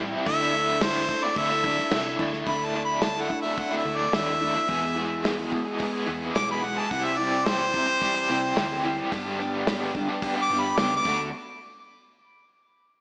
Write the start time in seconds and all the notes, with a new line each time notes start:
Already playing: A1 C3
0.00 E3 G3 C4 E4
0.14 G3 C4 E4
0.26 D2 D3 A3 D4 E4 E5, kick, crash
0.41 A3 D4 E4
0.53 D3 A3 D4 E4, crash
0.58 E4
0.81 D3 A3 D4 E4 C5, snare, crash
1.07 A3 D4 E4, muted overdriven electric guitar stroke, kick, crash
1.23 A3 D4 E4 D5
1.36 D2 D3 A3 D4 E4 E5, kick, crash
1.51 A3 D4 E4
1.64 D3 A3 D4 E4, kick, crash
1.78 snare
1.91 C2 D3 A3 D4 E4, snare, crash
2.05 A3 D4 E4
2.19 D2 D3 A3 D4 E4, kick, crash
2.33 A3 D4 E4, snare
2.46 D2 D3 A3 D4 E4 B5, kick, open hi-hat
2.65 A5
2.74 D3 A3 D4 E4
2.85 B5
3.01 D3 A3 D4 E4 A5, snare, open hi-hat
3.15 A3 D4 E4
3.21 F#5
3.28 A3 D4 E4, muted overdriven electric guitar stroke, kick
3.41 A3 D4 E4 E5
3.56 D3 A3 D4 E4 F#5, kick, open hi-hat
3.71 A3 D4 E4
3.77 E5
3.85 D2 D3 A3 D4 E4
3.96 D5
4.12 D#2 D3 A3 D4 E4 E5, snare, open hi-hat
4.40 D3 A3 D4 E4
4.55 A3 D4 E4
4.68 E2 B2 E3 G#3 B3 E4 G#4, kick, open hi-hat
4.95 E3 G#3 B3 E4 G#4
5.23 E2 B2 E3 G#3 B3 E4 G#4, snare, open hi-hat
5.38 E3 G#3 B3 G#4
5.51 E3 G#3 B3 E4, muted overdriven electric guitar stroke, kick
5.65 E3 G#3 B3 G#4
5.78 E2 B2 E3 G#3 B3 E4, kick, open hi-hat
5.93 E3 G#3 B3 G#4
6.06 E2 E3 G#3 B3 E4 G#4
6.34 B1 E2 B2 E3 G#3 B3 E4 G#4 D6, snare, open hi-hat
6.51 B5
6.62 E3 G#3 B3 E4 G#4 F#5
6.77 E3 G#3 B3 G#4 A5
6.91 C2 C3 E3 G3 C4 E4 G4 F#5, kick, open hi-hat
7.04 E5
7.17 E3 G3 C4 E4 G4 D5
7.44 C3 E3 G3 C4 E4 G4 C5, snare, open hi-hat
7.58 G3 C4 G4
7.73 G3 C4 E4, muted overdriven electric guitar stroke, kick
7.86 G3 C4 G4
8.01 C3 E3 G3 C4 E4, kick, open hi-hat
8.15 G3 C4 G4
8.29 C2 E3 G3 C4 E4 G4
8.56 D2 C3 E3 G3 C4 E4 G4, snare, open hi-hat
8.84 E3 G3 C4 E4 G4
8.97 G3 C4 G4
9.11 G1 G2 D3 G3 B3 D4 G4, kick, open hi-hat
9.39 G3 B3 D4 G4
9.67 G2 D3 G3 B3 D4 G4, snare, open hi-hat
9.81 G3 B3 D4 G4
9.95 G3 B3 D4 G4, muted overdriven electric guitar stroke, kick
10.09 G3 B3 D4 G4
10.22 G2 D3 G3 B3 D4 G4, kick, open hi-hat
10.36 G3 B3 D4 G4
10.42 D6
10.50 G1 G3 B3 D4 G4
10.60 B5
10.77 C#2 G2 D3 G3 B3 D4 G4 D6, snare, open hi-hat
10.96 D6
11.05 D2 D3 A3 D4 F#4, kick, crash